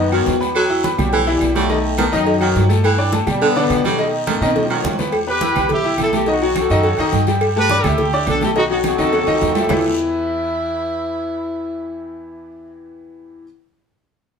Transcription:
Already playing: upright bass F#2, trombone section D#3 B3
0.12 baritone saxophone D#3, upright piano F#3 F#4 F#5, high conga, low agogo, claves
0.26 upright bass E2, high conga, low timbale, short guiro
0.40 upright piano B3 B4 B5, low agogo, short guiro
0.55 baritone saxophone F#3, cowbell, high conga, low agogo, long guiro, claves
0.70 upright piano E4 E5 E6, high conga
0.84 upright piano B3 B4 B5, cowbell, high conga, low agogo, short guiro
0.98 upright bass B1, trombone section A2 F#3, upright piano G3 G4 G5, high conga, low conga, low agogo, short guiro, claves
1.13 baritone saxophone E3, cowbell, high conga, long guiro
1.27 trombone section B2 G3, upright piano E3 E4 E5, high conga, low agogo
1.41 upright bass B1, cowbell, high conga, low agogo, short guiro, claves
1.55 trombone section D#3 A3, upright piano F#3 F#4 F#5, baritone saxophone G3, high conga, short guiro
1.69 upright piano D#3 D#4 D#5, cowbell, low agogo, long guiro
1.84 high conga
1.98 baritone saxophone D#3, trombone section D#3 B3, upright piano A3 A4 A5, cowbell, high conga, low agogo, short guiro, claves
2.12 upright bass F#2, upright piano D#3 D#4 D#5, trombone section F#3 D#4, high conga, short guiro
2.26 cowbell, low agogo, long guiro
2.40 baritone saxophone D#3, upright piano F#3 F#4 F#5, high conga, low agogo, claves
2.55 upright bass G2, cowbell, high conga, low timbale, short guiro
2.69 upright piano A3 A4 A5, cowbell, low agogo, short guiro
2.84 baritone saxophone E3, cowbell, high conga, low agogo, long guiro, claves
2.98 upright piano D4 D5 D6, high conga
3.12 upright piano A3 A4 A5, cowbell, high conga, low agogo, short guiro
3.27 upright bass B2, trombone section B2 G3, upright piano G3 G4 G5, high conga, low conga, low agogo, short guiro, claves
3.41 baritone saxophone D3, trombone section D3 B3, cowbell, high conga, long guiro
3.56 upright piano D3 D4 D5, trombone section D3 B3, high conga, low agogo
3.70 upright bass B2, cowbell, high conga, low timbale, low agogo, short guiro, claves
3.84 trombone section D#3 A3, upright piano F#3 F#4 F#5, baritone saxophone G3, high conga, short guiro
3.98 upright piano D#3 D#4 D#5, cowbell, high conga, low agogo, long guiro
4.13 high conga
4.27 baritone saxophone D#3, upright piano A3 A4 A5, cowbell, high conga, high timbale, low agogo, short guiro, claves
4.41 upright bass B2, upright piano D#3 D#4 D#5, short guiro
4.46 high timbale
4.55 cowbell, high conga, low timbale, low agogo, long guiro
4.65 low timbale
4.70 baritone saxophone D#3, upright piano F#3 F#4 F#5, low agogo, claves
4.84 upright bass E2, cowbell, low conga, low timbale, short guiro
4.93 low timbale
4.98 upright piano B3 B4 B5, cowbell, low conga, low agogo, short guiro
5.02 low timbale
5.12 cowbell, high conga, low agogo, long guiro, claves
5.27 upright piano B3 B4 B5, horn section G4 B4, high conga
5.41 upright piano E4 E5 E6, cowbell, high conga, low agogo, short guiro
5.55 upright bass B1, upright piano B3 B4 B5, high conga, low conga, low agogo, short guiro, claves
5.69 horn section E4 G4, cowbell, high conga, low conga, long guiro
5.84 upright piano E4 E5 E6, high conga, low agogo
5.98 upright bass B1, horn section E4 A4, cowbell, high conga, low agogo, short guiro, claves
6.13 upright piano A3 A4 A5, horn section E4 G4, high conga, short guiro
6.26 upright piano D#3 D#4 D#5, horn section D#4 F#4, cowbell, high conga, low agogo, long guiro
6.42 upright piano F#3 F#4 F#5, horn section D#4 F#4, high conga
6.55 horn section F#4 A4, cowbell, high conga, low agogo, short guiro, claves
6.70 upright bass F#2, upright piano D#3 D#4 D#5, high conga, short guiro
6.83 upright piano F#3 F#4 F#5, cowbell, low agogo, long guiro
6.98 upright piano D#3 D#4 D#5, high conga, low agogo, claves
7.12 upright bass G2, cowbell, high conga, short guiro
7.26 upright piano G3 G4 G5, cowbell, high conga, low agogo, short guiro
7.41 cowbell, high conga, low agogo, long guiro, claves
7.56 upright piano A3 A4 A5, horn section G4 B4, high conga
7.69 upright piano D4 D5 D6, cowbell, high conga, low agogo, short guiro
7.83 upright bass D2, upright piano A3 A4 A5, horn section E4 G4, high conga, low conga, low agogo, short guiro, claves
7.98 cowbell, high conga, low conga, long guiro
8.12 upright piano D4 D5 D6, high conga, low agogo
8.27 upright bass B1, horn section D4 A4, cowbell, high conga, low timbale, low agogo, short guiro, claves
8.41 upright piano A3 A4 A5, horn section E4 G4, high conga, short guiro
8.55 upright piano D#3 D#4 D#5, horn section D#4 F#4, cowbell, high conga, low agogo, long guiro
8.70 upright piano F#3 F#4 F#5, horn section D#4 F#4, high conga
8.84 horn section F#4 A4, cowbell, high conga, high timbale, low agogo, short guiro, claves
8.98 upright bass D#2, upright piano D#3 D#4 D#5, high conga, high timbale, short guiro
9.12 upright piano F#3 F#4 F#5, cowbell, high conga, high timbale, low agogo, long guiro
9.26 upright bass D#2, upright piano D#3 D#4 D#5, high conga, low timbale, low agogo, claves
9.41 upright bass E2, cowbell, high conga, low timbale, short guiro
9.55 upright piano G3 G4 G5, horn section E4 A4, cowbell, low timbale, low agogo, short guiro
9.69 upright bass E2, upright piano E3 B3 E4 G4 B4 E5, horn section E4, low bongo, low conga, low timbale, long guiro, claves

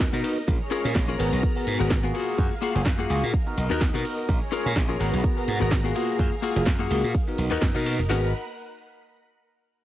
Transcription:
Already playing: tine electric piano D#4 F#4 A#4, string machine A#4 D#5
0.00 kick, snare, closed hi-hat, cabasa
0.13 slap bass B2, tine electric piano B3 D#4 F#4 A#4, clean electric guitar B3 D#4 F#4 A#4, closed hi-hat, cabasa
0.24 tine electric piano B3 D#4 F#4 A#4, open hi-hat, ride, cabasa
0.36 muted clean electric guitar stroke, closed hi-hat, cabasa
0.47 slap bass A#1, tine electric piano C#4 F4 G#4 A#4, string machine G#4 C#5 A#5, kick, closed hi-hat, cabasa
0.61 closed hi-hat
0.71 clean electric guitar C#4 F4 G#4 A#4, open hi-hat, ride, cabasa
0.84 slap bass A#2, tine electric piano C#4 F4 G#4 A#4, closed hi-hat, cabasa
0.95 slap bass A#1, kick, snare, closed hi-hat, cabasa
1.08 clean electric guitar C#4 F4 G#4 A#4, closed hi-hat
1.18 slap bass G#1, clean electric guitar B3 F#4 G#4 A#4, tine electric piano B3 F#4 G#4 A#4, string machine B3 F#4, open hi-hat, ride, cabasa
1.32 slap bass B1, closed hi-hat, cabasa
1.43 kick, closed hi-hat, cabasa
1.56 tine electric piano B3 F#4 G#4 A#4, closed hi-hat
1.67 slap bass G#2, open hi-hat, ride, cabasa
1.79 slap bass G#1, clean electric guitar B3 F#4 G#4 A#4, closed hi-hat, cabasa
1.90 kick, snare, closed hi-hat, cabasa
2.03 tine electric piano A#3 F4 F#4 G#4, clean electric guitar B3 F#4 G#4 A#4, closed hi-hat
2.14 clean electric guitar A#3 F4 F#4 G#4, string machine G#4 F5 A#5, open hi-hat, ride, cabasa
2.28 closed hi-hat, cabasa
2.38 slap bass F#2, tine electric piano A#3 F4 F#4 G#4, kick, closed hi-hat, cabasa
2.52 closed hi-hat
2.62 clean electric guitar A#3 F4 F#4 G#4, open hi-hat, ride, cabasa
2.75 slap bass F#1, tine electric piano A#3 F4 F#4 G#4, closed hi-hat, cabasa
2.86 kick, snare, closed hi-hat, cabasa
2.99 clean electric guitar A#3 F4 F#4 G#4, closed hi-hat
3.10 slap bass C#2, tine electric piano A#3 F4 F#4 G#4, open hi-hat, ride, cabasa
3.23 slap bass A#2, closed hi-hat, cabasa
3.34 string machine A#4 D#5, kick, closed hi-hat, cabasa
3.47 tine electric piano B3 D#4 F#4 A#4, closed hi-hat, cabasa
3.58 slap bass B1, open hi-hat, ride, cabasa
3.70 slap bass D#2, clean electric guitar B3 D#4 F#4 A#4, closed hi-hat, cabasa
3.81 kick, snare, closed hi-hat, cabasa
3.94 slap bass B2, clean electric guitar B3 D#4 F#4 A#4, tine electric piano B3 D#4 F#4 A#4, closed hi-hat, cabasa
4.05 open hi-hat, ride, cabasa
4.18 muted clean electric guitar stroke, closed hi-hat, cabasa
4.29 slap bass A#1, tine electric piano C#4 F4 G#4 A#4, string machine G#4 C#5 A#5, kick, closed hi-hat, cabasa
4.42 closed hi-hat
4.52 clean electric guitar C#4 F4 G#4 A#4, open hi-hat, ride, cabasa
4.66 slap bass A#2, tine electric piano C#4 F4 G#4 A#4, closed hi-hat, cabasa
4.76 slap bass A#1, kick, snare, closed hi-hat, cabasa
4.89 clean electric guitar C#4 F4 G#4 A#4, closed hi-hat
4.99 slap bass G#1, clean electric guitar B3 F#4 G#4 A#4, tine electric piano B3 F#4 G#4 A#4, string machine B3 F#4, open hi-hat, ride, cabasa
5.13 slap bass B1, closed hi-hat, cabasa
5.24 kick, closed hi-hat, cabasa
5.37 tine electric piano B3 F#4 G#4 A#4, closed hi-hat
5.48 slap bass G#2, open hi-hat, ride, cabasa
5.60 slap bass G#1, clean electric guitar B3 F#4 G#4 A#4, closed hi-hat, cabasa
5.71 kick, snare, closed hi-hat, cabasa
5.84 tine electric piano A#3 F4 F#4 G#4, clean electric guitar B3 F#4 G#4 A#4, closed hi-hat
5.95 clean electric guitar A#3 F4 F#4 G#4, string machine G#4 F5, open hi-hat, ride, cabasa
6.09 closed hi-hat, cabasa
6.19 slap bass F#2, tine electric piano A#3 F4 F#4 G#4, kick, closed hi-hat, cabasa
6.32 closed hi-hat, cabasa
6.42 clean electric guitar A#3 F4 F#4 G#4, open hi-hat, ride, cabasa
6.56 slap bass F#1, tine electric piano A#3 F4 F#4 G#4, closed hi-hat, cabasa
6.66 slap bass F#2, kick, snare, closed hi-hat, cabasa
6.79 clean electric guitar A#3 F4 F#4 G#4, closed hi-hat, cabasa
6.90 slap bass C#2, tine electric piano A#3 F4 F#4 G#4, open hi-hat, ride, cabasa
7.04 slap bass A#2, closed hi-hat, cabasa
7.14 string machine A#4 D#5, kick, closed hi-hat, cabasa
7.27 tine electric piano B3 D#4 F#4 A#4, closed hi-hat, cabasa
7.38 slap bass B1, open hi-hat, ride, cabasa
7.51 slap bass D#2, clean electric guitar B3 D#4 F#4 A#4, closed hi-hat, cabasa
7.62 slap bass F#2, kick, snare, closed hi-hat, cabasa
7.74 slap bass B2, clean electric guitar B3 D#4 F#4 A#4, tine electric piano B3 D#4 F#4 A#4, closed hi-hat, cabasa
7.86 tine electric piano B3 D#4 F#4 A#4, open hi-hat, ride, cabasa
7.98 slap bass F#1, muted clean electric guitar stroke, closed hi-hat, cabasa
8.09 slap bass G#1, tine electric piano B3 F#4 G#4 A#4, clean electric guitar B3 F#4 A#4, string machine A#4 F#5 B5, snare

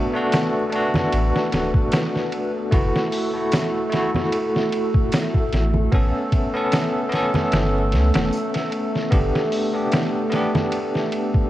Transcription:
Already playing: tine electric piano A3 D4 F#4, synth texture A3 A4, ambient pad B3 B4
0.13 tine electric piano A3 D4 F#4
0.32 snare, ride, tambourine
0.69 tine electric piano A3 D4, ride
0.75 tine electric piano F#4
0.94 snare, low conga
1.12 sub bass A1, ride
1.36 snare
1.52 sub bass D1, snare, ride
1.74 kick
1.92 snare, ride, tambourine
2.16 snare
2.32 ride
2.71 sub bass F#1, tine electric piano A3 E4 F#4, ambient pad A3 A4, kick, ride
2.96 snare
3.12 open hi-hat
3.34 tine electric piano A3 E4 F#4
3.52 snare, ride, tambourine
3.90 tine electric piano A3 E4, snare, ride
3.96 tine electric piano F#4
4.14 snare, low conga
4.32 ride
4.56 snare
4.72 ride
4.94 kick
5.12 snare, ride, tambourine
5.34 kick
5.52 sub bass A1, snare, ride
5.74 low conga
5.92 sub bass A1, tine electric piano B3 C#4 A4, kick, ride
6.32 kick, ride
6.53 tine electric piano B3 C#4 A4
6.72 snare, ride, tambourine
7.09 tine electric piano B3 C#4, ride
7.14 tine electric piano A4, snare
7.34 snare, low conga
7.52 sub bass G1, snare, ride
7.92 sub bass C#2, snare, ride
8.14 sub bass E1, snare, ride
8.33 tambourine
8.54 snare, ride
8.72 ride
8.96 snare
9.11 sub bass G1, tine electric piano B3 D4 G4, kick, ride
9.36 snare
9.52 open hi-hat
9.73 tine electric piano B3 D4 G4
9.92 snare, ride, tambourine
10.30 tine electric piano B3 D4, snare, ride
10.36 tine electric piano G4
10.55 snare, low conga
10.72 ride
10.95 snare
11.12 ride
11.34 kick

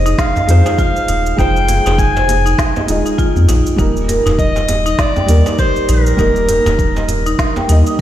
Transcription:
Already playing: sub bass F1, felt piano G#3 D#4 F4 C5, clarinet D#5
0.06 marimba D#4, shaker
0.18 clarinet F5, kick, snare, shaker
0.35 marimba D#5, djembe tone, djembe bass, shaker
0.47 sub bass F2, felt piano G#3 D#4 F4 C5, closed hi-hat, shaker
0.66 marimba D#4, djembe slap, shaker
0.78 marimba F4, clarinet F5, kick, shaker
0.96 shaker
1.09 sub bass D#1, marimba D#4, closed hi-hat, djembe tone, shaker
1.26 shaker
1.37 sub bass F1, felt piano G#3 D#4 F4 C5, marimba D#4, clarinet G5, kick, shaker
1.56 shaker
1.69 marimba G#4, closed hi-hat, djembe tone, shaker
1.86 sub bass F1, marimba D#4, djembe slap, shaker
1.98 clarinet G#5, kick, shaker
2.16 marimba C5, djembe slap, shaker
2.29 closed hi-hat, djembe tone, shaker
2.46 marimba D#4, shaker
2.58 kick, snare, shaker
2.76 marimba D#5, djembe slap, djembe tone, shaker
2.87 sub bass D#1, felt piano G#3 D#4 F4 D#5, closed hi-hat, shaker
3.06 marimba D#4, shaker
3.18 marimba F4, kick, shaker
3.36 sub bass F2, djembe bass, shaker
3.48 sub bass A#1, marimba D#4, closed hi-hat, djembe slap, djembe tone, shaker
3.67 shaker
3.76 sub bass D#1, felt piano G3 A#3 D#4 A#4, marimba D#4, kick, shaker
3.97 shaker
4.08 marimba A#4, closed hi-hat, djembe tone, shaker
4.26 sub bass D#1, marimba D#4, djembe slap, djembe bass, shaker
4.38 clarinet D#5, kick, shaker
4.56 marimba D#5, djembe slap, shaker
4.69 closed hi-hat, djembe tone, shaker
4.86 marimba D#4, shaker
4.99 clarinet D5, kick, snare, shaker
5.16 marimba G5, djembe tone, djembe bass, shaker
5.26 sub bass D#2, felt piano G3 A#3 D#4, closed hi-hat, shaker
5.30 felt piano A#4
5.46 marimba D#4, djembe slap, shaker
5.59 marimba G4, clarinet C5, kick, shaker
5.76 shaker
5.89 sub bass A#1, marimba D#4, clarinet A#4, closed hi-hat, djembe tone, shaker
6.06 shaker
6.17 sub bass D#1, felt piano G3 A#3 D#4 A#4, marimba D#4, kick, shaker
6.36 shaker
6.49 marimba A#4, closed hi-hat, djembe tone, shaker
6.66 sub bass D#1, marimba D#4, djembe slap, djembe bass, shaker
6.79 kick, shaker
6.96 marimba D#5, djembe slap, shaker
7.08 closed hi-hat, djembe tone, shaker
7.26 marimba D#4, shaker
7.39 kick, snare, shaker
7.56 marimba G5, djembe slap, djembe tone, shaker
7.68 sub bass D#2, felt piano G3 A#3 D#4 D#5, marimba D#4, closed hi-hat, shaker
7.87 marimba D#6, shaker

